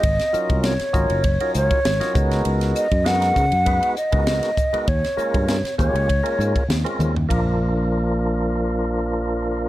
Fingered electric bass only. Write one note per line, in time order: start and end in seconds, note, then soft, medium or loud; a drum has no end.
0.04 0.18 G#1 medium
0.34 muted fingered electric bass stroke soft
0.50 0.76 C2 medium
0.80 muted fingered electric bass stroke soft
0.94 1.08 G#1 medium
1.10 1.37 F#1 medium
1.55 1.69 C#2 medium
1.85 1.99 G#1 medium
2.15 2.42 C#2 medium
2.46 2.72 C#2 medium
2.92 3.31 F#2 medium
3.36 3.50 C#3 medium
3.52 3.79 F#2 medium
4.13 4.39 C#2 medium
4.73 muted fingered electric bass stroke soft
4.88 5.02 D#2 medium
5.17 muted fingered electric bass stroke soft
5.34 5.61 G2 medium
5.63 muted fingered electric bass stroke soft
5.79 5.93 D#2 medium
5.94 6.21 C#2 medium
6.39 6.53 G#2 medium
6.69 6.83 D#2 medium
6.99 7.26 D#2 medium
7.30 9.69 A#1 medium